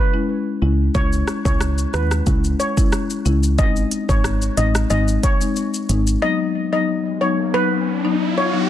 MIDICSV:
0, 0, Header, 1, 6, 480
1, 0, Start_track
1, 0, Key_signature, 4, "minor"
1, 0, Tempo, 659341
1, 691, Time_signature, 4, 2, 24, 8
1, 6329, End_track
2, 0, Start_track
2, 0, Title_t, "Steel pan"
2, 0, Program_c, 0, 114
2, 0, Note_on_c, 0, 71, 81
2, 74, Note_off_c, 0, 71, 0
2, 691, Note_on_c, 0, 73, 106
2, 886, Note_off_c, 0, 73, 0
2, 1058, Note_on_c, 0, 73, 80
2, 1150, Note_off_c, 0, 73, 0
2, 1411, Note_on_c, 0, 71, 81
2, 1514, Note_off_c, 0, 71, 0
2, 1890, Note_on_c, 0, 73, 76
2, 1994, Note_off_c, 0, 73, 0
2, 2611, Note_on_c, 0, 75, 92
2, 2714, Note_off_c, 0, 75, 0
2, 2978, Note_on_c, 0, 73, 83
2, 3173, Note_off_c, 0, 73, 0
2, 3330, Note_on_c, 0, 75, 82
2, 3526, Note_off_c, 0, 75, 0
2, 3569, Note_on_c, 0, 75, 86
2, 3674, Note_off_c, 0, 75, 0
2, 3811, Note_on_c, 0, 73, 90
2, 3915, Note_off_c, 0, 73, 0
2, 4530, Note_on_c, 0, 75, 102
2, 4726, Note_off_c, 0, 75, 0
2, 4897, Note_on_c, 0, 75, 77
2, 4989, Note_off_c, 0, 75, 0
2, 5249, Note_on_c, 0, 73, 76
2, 5354, Note_off_c, 0, 73, 0
2, 5490, Note_on_c, 0, 71, 105
2, 5835, Note_off_c, 0, 71, 0
2, 6098, Note_on_c, 0, 73, 76
2, 6190, Note_off_c, 0, 73, 0
2, 6329, End_track
3, 0, Start_track
3, 0, Title_t, "Marimba"
3, 0, Program_c, 1, 12
3, 96, Note_on_c, 1, 56, 77
3, 98, Note_on_c, 1, 61, 72
3, 101, Note_on_c, 1, 64, 89
3, 423, Note_off_c, 1, 56, 0
3, 424, Note_off_c, 1, 61, 0
3, 425, Note_off_c, 1, 64, 0
3, 449, Note_on_c, 1, 56, 74
3, 452, Note_on_c, 1, 61, 65
3, 453, Note_on_c, 1, 64, 79
3, 672, Note_off_c, 1, 56, 0
3, 673, Note_off_c, 1, 61, 0
3, 674, Note_off_c, 1, 64, 0
3, 689, Note_on_c, 1, 56, 98
3, 691, Note_on_c, 1, 61, 86
3, 693, Note_on_c, 1, 64, 105
3, 1026, Note_off_c, 1, 56, 0
3, 1027, Note_off_c, 1, 61, 0
3, 1029, Note_off_c, 1, 64, 0
3, 1055, Note_on_c, 1, 56, 76
3, 1058, Note_on_c, 1, 61, 70
3, 1060, Note_on_c, 1, 64, 81
3, 1203, Note_off_c, 1, 56, 0
3, 1204, Note_off_c, 1, 61, 0
3, 1205, Note_off_c, 1, 64, 0
3, 1409, Note_on_c, 1, 56, 74
3, 1411, Note_on_c, 1, 61, 67
3, 1413, Note_on_c, 1, 64, 82
3, 1567, Note_off_c, 1, 56, 0
3, 1568, Note_off_c, 1, 61, 0
3, 1569, Note_off_c, 1, 64, 0
3, 1648, Note_on_c, 1, 56, 90
3, 1650, Note_on_c, 1, 61, 86
3, 1652, Note_on_c, 1, 64, 98
3, 1986, Note_off_c, 1, 56, 0
3, 1987, Note_off_c, 1, 61, 0
3, 1988, Note_off_c, 1, 64, 0
3, 2015, Note_on_c, 1, 56, 78
3, 2018, Note_on_c, 1, 61, 74
3, 2020, Note_on_c, 1, 64, 92
3, 2342, Note_off_c, 1, 56, 0
3, 2344, Note_off_c, 1, 61, 0
3, 2345, Note_off_c, 1, 64, 0
3, 2368, Note_on_c, 1, 56, 72
3, 2370, Note_on_c, 1, 61, 70
3, 2372, Note_on_c, 1, 64, 86
3, 2591, Note_off_c, 1, 56, 0
3, 2592, Note_off_c, 1, 61, 0
3, 2593, Note_off_c, 1, 64, 0
3, 2608, Note_on_c, 1, 56, 96
3, 2611, Note_on_c, 1, 60, 91
3, 2612, Note_on_c, 1, 63, 109
3, 2946, Note_off_c, 1, 56, 0
3, 2947, Note_off_c, 1, 60, 0
3, 2948, Note_off_c, 1, 63, 0
3, 2975, Note_on_c, 1, 56, 73
3, 2977, Note_on_c, 1, 60, 66
3, 2980, Note_on_c, 1, 63, 86
3, 3123, Note_off_c, 1, 56, 0
3, 3124, Note_off_c, 1, 60, 0
3, 3125, Note_off_c, 1, 63, 0
3, 3329, Note_on_c, 1, 56, 76
3, 3330, Note_on_c, 1, 60, 68
3, 3333, Note_on_c, 1, 63, 84
3, 3487, Note_off_c, 1, 56, 0
3, 3488, Note_off_c, 1, 60, 0
3, 3489, Note_off_c, 1, 63, 0
3, 3569, Note_on_c, 1, 56, 91
3, 3571, Note_on_c, 1, 60, 82
3, 3573, Note_on_c, 1, 63, 101
3, 3906, Note_off_c, 1, 56, 0
3, 3907, Note_off_c, 1, 60, 0
3, 3908, Note_off_c, 1, 63, 0
3, 3936, Note_on_c, 1, 56, 78
3, 3938, Note_on_c, 1, 60, 74
3, 3940, Note_on_c, 1, 63, 85
3, 4263, Note_off_c, 1, 56, 0
3, 4264, Note_off_c, 1, 60, 0
3, 4265, Note_off_c, 1, 63, 0
3, 4288, Note_on_c, 1, 56, 78
3, 4290, Note_on_c, 1, 60, 66
3, 4293, Note_on_c, 1, 63, 86
3, 4511, Note_off_c, 1, 56, 0
3, 4512, Note_off_c, 1, 60, 0
3, 4514, Note_off_c, 1, 63, 0
3, 4528, Note_on_c, 1, 54, 98
3, 4530, Note_on_c, 1, 59, 90
3, 4532, Note_on_c, 1, 63, 111
3, 4866, Note_off_c, 1, 54, 0
3, 4867, Note_off_c, 1, 59, 0
3, 4868, Note_off_c, 1, 63, 0
3, 4896, Note_on_c, 1, 54, 75
3, 4898, Note_on_c, 1, 59, 66
3, 4900, Note_on_c, 1, 63, 83
3, 5043, Note_off_c, 1, 54, 0
3, 5044, Note_off_c, 1, 59, 0
3, 5045, Note_off_c, 1, 63, 0
3, 5248, Note_on_c, 1, 54, 75
3, 5250, Note_on_c, 1, 59, 72
3, 5252, Note_on_c, 1, 63, 84
3, 5406, Note_off_c, 1, 54, 0
3, 5407, Note_off_c, 1, 59, 0
3, 5408, Note_off_c, 1, 63, 0
3, 5488, Note_on_c, 1, 54, 94
3, 5490, Note_on_c, 1, 59, 84
3, 5492, Note_on_c, 1, 63, 100
3, 5826, Note_off_c, 1, 54, 0
3, 5827, Note_off_c, 1, 59, 0
3, 5828, Note_off_c, 1, 63, 0
3, 5855, Note_on_c, 1, 54, 82
3, 5857, Note_on_c, 1, 59, 72
3, 5859, Note_on_c, 1, 63, 91
3, 6182, Note_off_c, 1, 54, 0
3, 6183, Note_off_c, 1, 59, 0
3, 6184, Note_off_c, 1, 63, 0
3, 6208, Note_on_c, 1, 54, 75
3, 6211, Note_on_c, 1, 59, 71
3, 6213, Note_on_c, 1, 63, 82
3, 6329, Note_off_c, 1, 54, 0
3, 6329, Note_off_c, 1, 59, 0
3, 6329, Note_off_c, 1, 63, 0
3, 6329, End_track
4, 0, Start_track
4, 0, Title_t, "FM bass"
4, 0, Program_c, 2, 39
4, 451, Note_on_c, 2, 37, 89
4, 651, Note_off_c, 2, 37, 0
4, 691, Note_on_c, 2, 37, 106
4, 891, Note_off_c, 2, 37, 0
4, 1058, Note_on_c, 2, 37, 85
4, 1352, Note_off_c, 2, 37, 0
4, 1411, Note_on_c, 2, 39, 93
4, 1611, Note_off_c, 2, 39, 0
4, 1651, Note_on_c, 2, 37, 105
4, 1851, Note_off_c, 2, 37, 0
4, 2371, Note_on_c, 2, 37, 88
4, 2610, Note_on_c, 2, 32, 100
4, 2621, Note_off_c, 2, 37, 0
4, 2811, Note_off_c, 2, 32, 0
4, 2978, Note_on_c, 2, 32, 85
4, 3272, Note_off_c, 2, 32, 0
4, 3331, Note_on_c, 2, 33, 91
4, 3531, Note_off_c, 2, 33, 0
4, 3571, Note_on_c, 2, 32, 104
4, 3771, Note_off_c, 2, 32, 0
4, 4291, Note_on_c, 2, 32, 93
4, 4491, Note_off_c, 2, 32, 0
4, 6329, End_track
5, 0, Start_track
5, 0, Title_t, "Riser"
5, 0, Program_c, 3, 103
5, 4531, Note_on_c, 3, 60, 84
5, 6329, Note_off_c, 3, 60, 0
5, 6329, End_track
6, 0, Start_track
6, 0, Title_t, "Drums"
6, 691, Note_on_c, 9, 36, 119
6, 691, Note_on_c, 9, 82, 62
6, 764, Note_off_c, 9, 36, 0
6, 764, Note_off_c, 9, 82, 0
6, 819, Note_on_c, 9, 82, 57
6, 892, Note_off_c, 9, 82, 0
6, 928, Note_on_c, 9, 37, 81
6, 930, Note_on_c, 9, 82, 47
6, 1001, Note_off_c, 9, 37, 0
6, 1002, Note_off_c, 9, 82, 0
6, 1058, Note_on_c, 9, 36, 100
6, 1060, Note_on_c, 9, 82, 68
6, 1131, Note_off_c, 9, 36, 0
6, 1133, Note_off_c, 9, 82, 0
6, 1169, Note_on_c, 9, 37, 101
6, 1171, Note_on_c, 9, 82, 74
6, 1242, Note_off_c, 9, 37, 0
6, 1244, Note_off_c, 9, 82, 0
6, 1297, Note_on_c, 9, 82, 59
6, 1370, Note_off_c, 9, 82, 0
6, 1411, Note_on_c, 9, 82, 48
6, 1412, Note_on_c, 9, 37, 98
6, 1483, Note_off_c, 9, 82, 0
6, 1485, Note_off_c, 9, 37, 0
6, 1538, Note_on_c, 9, 37, 106
6, 1538, Note_on_c, 9, 82, 76
6, 1611, Note_off_c, 9, 37, 0
6, 1611, Note_off_c, 9, 82, 0
6, 1649, Note_on_c, 9, 82, 74
6, 1651, Note_on_c, 9, 36, 91
6, 1722, Note_off_c, 9, 82, 0
6, 1723, Note_off_c, 9, 36, 0
6, 1777, Note_on_c, 9, 82, 55
6, 1850, Note_off_c, 9, 82, 0
6, 1892, Note_on_c, 9, 82, 59
6, 1964, Note_off_c, 9, 82, 0
6, 2019, Note_on_c, 9, 36, 89
6, 2019, Note_on_c, 9, 82, 82
6, 2091, Note_off_c, 9, 82, 0
6, 2092, Note_off_c, 9, 36, 0
6, 2128, Note_on_c, 9, 82, 64
6, 2129, Note_on_c, 9, 37, 96
6, 2201, Note_off_c, 9, 82, 0
6, 2202, Note_off_c, 9, 37, 0
6, 2257, Note_on_c, 9, 82, 56
6, 2330, Note_off_c, 9, 82, 0
6, 2371, Note_on_c, 9, 82, 56
6, 2444, Note_off_c, 9, 82, 0
6, 2498, Note_on_c, 9, 82, 70
6, 2571, Note_off_c, 9, 82, 0
6, 2610, Note_on_c, 9, 36, 124
6, 2610, Note_on_c, 9, 82, 66
6, 2683, Note_off_c, 9, 36, 0
6, 2683, Note_off_c, 9, 82, 0
6, 2739, Note_on_c, 9, 82, 57
6, 2812, Note_off_c, 9, 82, 0
6, 2850, Note_on_c, 9, 42, 66
6, 2850, Note_on_c, 9, 82, 47
6, 2923, Note_off_c, 9, 42, 0
6, 2923, Note_off_c, 9, 82, 0
6, 2978, Note_on_c, 9, 36, 100
6, 2980, Note_on_c, 9, 82, 69
6, 3051, Note_off_c, 9, 36, 0
6, 3053, Note_off_c, 9, 82, 0
6, 3089, Note_on_c, 9, 37, 102
6, 3091, Note_on_c, 9, 82, 76
6, 3162, Note_off_c, 9, 37, 0
6, 3164, Note_off_c, 9, 82, 0
6, 3216, Note_on_c, 9, 82, 59
6, 3289, Note_off_c, 9, 82, 0
6, 3330, Note_on_c, 9, 42, 67
6, 3330, Note_on_c, 9, 82, 49
6, 3403, Note_off_c, 9, 42, 0
6, 3403, Note_off_c, 9, 82, 0
6, 3458, Note_on_c, 9, 37, 103
6, 3458, Note_on_c, 9, 82, 79
6, 3531, Note_off_c, 9, 37, 0
6, 3531, Note_off_c, 9, 82, 0
6, 3569, Note_on_c, 9, 82, 72
6, 3642, Note_off_c, 9, 82, 0
6, 3698, Note_on_c, 9, 82, 56
6, 3770, Note_off_c, 9, 82, 0
6, 3810, Note_on_c, 9, 36, 96
6, 3811, Note_on_c, 9, 42, 81
6, 3811, Note_on_c, 9, 82, 61
6, 3883, Note_off_c, 9, 36, 0
6, 3884, Note_off_c, 9, 42, 0
6, 3884, Note_off_c, 9, 82, 0
6, 3939, Note_on_c, 9, 82, 80
6, 4011, Note_off_c, 9, 82, 0
6, 4049, Note_on_c, 9, 82, 64
6, 4121, Note_off_c, 9, 82, 0
6, 4177, Note_on_c, 9, 82, 56
6, 4250, Note_off_c, 9, 82, 0
6, 4291, Note_on_c, 9, 42, 75
6, 4291, Note_on_c, 9, 82, 56
6, 4363, Note_off_c, 9, 42, 0
6, 4363, Note_off_c, 9, 82, 0
6, 4418, Note_on_c, 9, 82, 73
6, 4491, Note_off_c, 9, 82, 0
6, 6329, End_track
0, 0, End_of_file